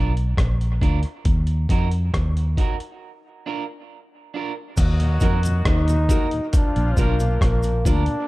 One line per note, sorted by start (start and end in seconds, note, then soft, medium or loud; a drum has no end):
0.00 0.35 B1 medium
0.00 0.11 D4 medium
0.00 0.12 F4 medium
0.00 0.12 A#4 medium
0.17 closed hi-hat soft
0.37 0.79 A#1 medium
0.37 kick loud
0.37 cross-stick loud
0.37 closed hi-hat medium
0.61 closed hi-hat soft
0.81 1.03 D2 medium
0.81 0.99 D4 medium
0.81 0.99 F4 medium
0.81 0.99 A#4 medium
0.81 kick medium
0.81 closed hi-hat medium
1.03 closed hi-hat soft
1.25 1.67 D#2 loud
1.25 kick loud
1.25 closed hi-hat medium
1.47 closed hi-hat soft
1.69 2.11 F2 medium
1.69 1.87 D#4 medium
1.69 1.87 F#4 medium
1.69 1.88 A#4 loud
1.69 kick medium
1.69 closed hi-hat medium
1.92 closed hi-hat medium
2.14 2.55 D#2 medium
2.14 kick loud
2.14 cross-stick loud
2.14 closed hi-hat medium
2.37 closed hi-hat medium
2.57 2.75 D#4 medium
2.57 2.75 F#4 medium
2.57 2.76 A#4 medium
2.57 kick medium
2.57 closed hi-hat medium
2.80 closed hi-hat soft
3.46 3.63 D4 medium
3.46 3.63 F4 medium
3.46 3.63 A#4 medium
4.34 4.51 D4 medium
4.34 4.51 F4 medium
4.34 4.52 A#4 medium
4.76 5.19 D#2 medium
4.76 6.07 F#3 medium
4.76 6.06 A#3 medium
4.76 6.06 D#4 medium
4.76 6.07 F#4 loud
4.76 kick loud
4.76 closed hi-hat medium
4.76 crash loud
4.76 cabasa medium
5.00 5.09 D#2 medium
5.00 5.09 A#2 medium
5.00 closed hi-hat medium
5.20 5.63 F2 medium
5.20 5.30 D#3 medium
5.20 5.30 F#3 medium
5.20 5.36 A#3 medium
5.20 5.31 A#3 medium
5.20 5.38 D#4 medium
5.20 5.36 D#4 medium
5.20 5.39 F#4 medium
5.20 5.36 F#4 medium
5.20 5.37 A#4 medium
5.20 5.39 A#4 medium
5.20 kick medium
5.20 closed hi-hat medium
5.20 cabasa medium
5.43 5.53 D#2 soft
5.43 5.53 A#2 medium
5.43 closed hi-hat medium
5.43 cabasa medium
5.65 6.07 D#2 medium
5.65 6.49 D#4 loud
5.65 kick loud
5.65 cross-stick loud
5.65 closed hi-hat medium
5.88 5.97 D#2 medium
5.88 5.97 A#2 medium
5.88 5.97 F#4 soft
5.88 5.97 A#4 soft
5.88 muted clean electric guitar stroke medium
5.88 closed hi-hat medium
5.88 cabasa medium
6.09 6.19 D#3 medium
6.09 6.19 F#3 medium
6.09 6.24 A#3 medium
6.09 6.19 A#3 medium
6.09 6.26 D#4 medium
6.09 6.24 D#4 medium
6.09 6.27 F#4 medium
6.09 6.24 F#4 medium
6.09 6.24 A#4 loud
6.09 6.27 A#4 medium
6.09 kick loud
6.09 closed hi-hat medium
6.09 cabasa medium
6.31 6.41 D#2 medium
6.31 6.41 A#2 medium
6.31 closed hi-hat soft
6.49 7.82 F3 medium
6.49 7.83 A#3 medium
6.49 7.83 D4 medium
6.49 6.57 D#4 medium
6.49 7.82 F4 loud
6.49 closed hi-hat loud
6.54 7.01 D4 loud
6.54 kick loud
6.54 cabasa medium
6.76 6.96 A#1 medium
6.76 6.85 A#2 medium
6.76 closed hi-hat soft
6.97 7.39 B1 medium
6.97 7.06 D3 medium
6.97 7.06 F3 medium
6.97 7.12 A#3 medium
6.97 7.06 A#3 medium
6.97 7.43 A#3 medium
6.97 7.12 D4 medium
6.97 7.15 D4 medium
6.97 7.12 F4 medium
6.97 7.15 F4 medium
6.97 7.12 A#4 loud
6.97 7.16 A#4 medium
6.97 kick medium
6.97 closed hi-hat medium
6.97 cabasa medium
7.20 7.28 A#2 medium
7.20 7.29 F4 soft
7.20 7.29 A#4 soft
7.20 closed hi-hat soft
7.20 cabasa medium
7.41 7.83 A#1 medium
7.41 7.89 A#3 medium
7.41 kick loud
7.41 cross-stick loud
7.41 closed hi-hat medium
7.63 7.72 A#2 medium
7.63 closed hi-hat soft
7.63 cabasa soft
7.85 8.07 D2 medium
7.85 7.94 D3 medium
7.85 7.94 F3 medium
7.85 8.00 A#3 medium
7.85 7.94 A#3 medium
7.85 8.00 D4 medium
7.85 8.03 D4 medium
7.85 8.28 D4 medium
7.85 8.00 F4 medium
7.85 8.03 F4 medium
7.85 8.00 A#4 medium
7.85 8.03 A#4 loud
7.85 kick loud
7.85 closed hi-hat medium
7.85 cabasa medium
8.06 8.16 A#2 medium
8.06 closed hi-hat soft